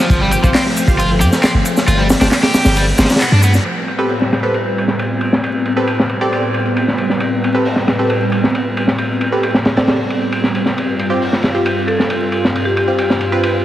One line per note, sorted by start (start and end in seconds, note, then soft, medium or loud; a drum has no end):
0.00 0.20 F3 medium
0.00 3.62 F3 medium
0.00 3.61 C4 medium
0.10 0.37 G1 loud
0.10 3.62 A3 medium
0.10 kick loud
0.10 ride medium
0.10 shaker soft
0.21 0.29 G3 loud
0.31 0.37 G4 medium
0.31 ride medium
0.31 shaker medium
0.44 0.50 G1 medium
0.44 0.48 F3 medium
0.44 0.56 F4 medium
0.44 0.56 G4 medium
0.44 0.56 C5 loud
0.44 kick loud
0.44 shaker soft
0.54 0.62 C4 medium
0.54 snare loud
0.54 clap loud
0.54 open hi-hat medium
0.54 shaker soft
0.66 snare soft
0.77 ride medium
0.77 shaker medium
0.88 1.22 G1 loud
0.88 1.01 F4 medium
0.88 1.01 G4 medium
0.88 1.01 C5 medium
0.88 kick medium
0.88 shaker soft
0.99 1.09 F4 medium
0.99 ride medium
0.99 shaker soft
1.21 1.28 G2 loud
1.21 1.26 G4 medium
1.21 ride medium
1.21 shaker medium
1.32 snare soft
1.32 shaker soft
1.43 1.51 C4 medium
1.43 snare loud
1.43 clap loud
1.43 ride medium
1.43 shaker soft
1.54 1.61 G1 medium
1.65 ride medium
1.65 shaker medium
1.77 snare medium
1.77 shaker soft
1.87 2.14 G1 loud
1.87 1.98 F4 medium
1.87 ride medium
1.87 shaker soft
1.99 2.06 G3 loud
2.10 snare loud
2.10 open hi-hat medium
2.10 shaker medium
2.21 2.28 G1 medium
2.21 2.26 D4 loud
2.21 2.34 F4 medium
2.21 2.34 G4 medium
2.21 2.34 C5 medium
2.21 snare loud
2.21 open hi-hat medium
2.21 shaker soft
2.32 snare loud
2.32 clap loud
2.32 open hi-hat medium
2.32 shaker soft
2.43 2.75 G4 medium
2.43 snare medium
2.43 open hi-hat medium
2.54 snare loud
2.54 open hi-hat medium
2.54 shaker medium
2.65 2.92 G1 loud
2.65 snare loud
2.65 open hi-hat medium
2.65 shaker soft
2.76 2.84 G3 medium
2.76 ride medium
2.76 shaker soft
2.98 3.06 G1 loud
2.98 3.10 F3 loud
2.98 snare medium
2.98 open hi-hat medium
2.98 shaker medium
3.04 snare medium
3.04 open hi-hat medium
3.09 snare medium
3.09 open hi-hat medium
3.09 shaker soft
3.15 snare medium
3.15 open hi-hat medium
3.21 3.29 B3 loud
3.21 clap loud
3.21 shaker soft
3.32 3.59 G2 loud
3.32 3.43 D4 medium
3.43 3.51 B3 medium
3.43 ride medium
3.43 shaker medium
3.54 snare soft
3.54 shaker soft
3.65 10.73 A2 medium
3.65 13.65 G3 medium
3.65 10.72 B3 medium
3.65 13.65 C4 medium
3.65 ride medium
3.88 ride medium
3.98 4.12 C4 medium
3.98 4.12 G4 medium
3.98 4.12 A4 medium
3.98 4.12 B4 medium
4.09 open hi-hat medium
4.22 snare soft
4.32 snare soft
4.32 ride medium
4.43 4.56 C4 medium
4.43 4.56 G4 medium
4.43 4.56 A4 medium
4.43 4.56 B4 medium
4.54 ride medium
4.78 ride medium
4.88 snare soft
4.99 ride medium
5.21 ride medium
5.33 snare soft
5.44 ride medium
5.65 ride medium
5.77 5.90 C4 medium
5.77 5.90 G4 medium
5.77 5.90 A4 medium
5.77 5.90 B4 medium
5.87 ride medium
6.00 snare soft
6.09 ride medium
6.21 6.42 C4 medium
6.21 6.42 G4 medium
6.21 6.42 A4 medium
6.21 6.42 D5 loud
6.32 ride medium
6.54 ride medium
6.65 ride soft
6.76 ride medium
6.88 snare soft
6.98 ride medium
7.10 snare soft
7.20 ride medium
7.44 ride medium
7.54 7.67 C4 medium
7.54 7.67 G4 medium
7.54 7.67 A4 medium
7.54 7.67 B4 loud
7.65 open hi-hat medium
7.76 snare soft
7.88 snare soft
7.88 ride medium
7.99 8.12 C4 medium
7.99 8.12 G4 medium
7.99 8.12 A4 medium
7.99 8.12 B4 medium
8.10 ride medium
8.32 ride medium
8.44 snare soft
8.55 ride medium
8.77 ride medium
8.88 snare soft
8.98 ride medium
9.21 ride medium
9.32 9.45 C4 medium
9.32 9.45 G4 medium
9.32 9.45 A4 medium
9.32 9.45 B4 medium
9.43 ride medium
9.54 snare soft
9.65 snare loud
9.65 open hi-hat medium
9.77 9.98 C4 medium
9.77 9.98 G4 medium
9.77 9.98 A4 medium
9.77 9.98 D5 loud
9.77 snare medium
9.77 open hi-hat medium
9.87 snare loud
9.87 open hi-hat medium
10.10 ride medium
10.21 ride soft
10.32 ride medium
10.44 snare soft
10.55 ride medium
10.66 snare soft
10.77 13.65 G2 medium
10.77 13.65 F4 medium
10.77 ride medium
10.99 ride medium
11.10 11.23 C4 medium
11.10 11.23 F4 medium
11.10 11.23 G4 medium
11.22 open hi-hat medium
11.33 snare soft
11.43 snare soft
11.43 ride medium
11.54 11.67 C4 medium
11.54 11.67 F4 medium
11.54 11.67 G4 medium
11.66 ride medium
11.87 11.95 A4 medium
11.87 ride medium
11.98 12.06 A4 medium
11.98 snare soft
12.10 ride medium
12.32 ride medium
12.45 snare soft
12.55 ride medium
12.65 12.72 G4 medium
12.76 12.84 G4 medium
12.76 ride medium
12.88 13.01 C4 medium
12.88 13.01 F4 medium
12.88 13.01 G4 medium
12.98 ride medium
13.10 snare soft
13.21 ride medium
13.32 13.53 C4 medium
13.32 13.53 F4 medium
13.32 13.53 B4 loud
13.43 ride medium